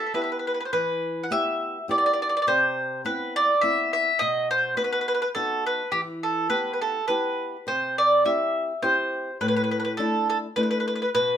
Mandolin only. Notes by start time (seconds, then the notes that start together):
Already playing: A4
0.06 E5
0.14 B4 E5
0.22 B4 E5
0.32 B4
0.39 B4
0.47 B4
0.54 B4
0.60 B4
0.65 C5
0.73 B4
1.23 F#5
1.32 E5
1.91 D5
1.98 D5
2.06 D5
2.13 D5
2.22 D5
2.29 D5
2.37 D5
2.42 D5
2.48 C5
3.06 B4
3.36 D5
3.61 E5
3.93 E5
4.19 D#5
4.51 C5
4.77 B4
4.84 B4
4.92 B4
5.01 B4
5.08 B4
5.14 B4
5.22 B4
5.35 A4
5.66 B4
5.92 G4
6.23 A4
6.50 B4
6.73 B4
6.82 A4
7.08 B4
7.68 C5
7.98 D5
8.26 E5
8.83 C5
9.41 B4
9.48 B4
9.56 B4
9.64 B4
9.71 B4
9.80 B4
9.85 B4
9.97 A4
10.30 A4
10.56 B4
10.63 B4
10.71 B4
10.80 B4
10.88 B4
10.96 B4
11.02 B4
11.15 B4